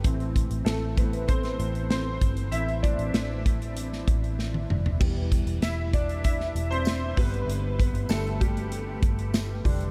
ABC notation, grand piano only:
X:1
M:4/4
L:1/16
Q:1/4=97
K:Am
V:1 name="Grand piano"
z4 [A,A]2 [B,B]2 [Cc]4 [Cc]4 | [Ee]2 [Dd]12 z2 | z4 [Ee]2 [Dd]2 [Ee]3 [Cc]3 [B,B]2- | [B,B]2 [B,B]2 [A,A]2 [G,G]8 z2 |]
V:2 name="Grand piano" clef=bass
[E,A,C]2 z4 [E,A,C]2 z8 | z2 [E,A,C]12- [E,A,C]2 | [E,G,B,]6 z8 [D,G,]2- | [D,G,]4 [D,G,B,]2 z8 [D,G,D]2 |]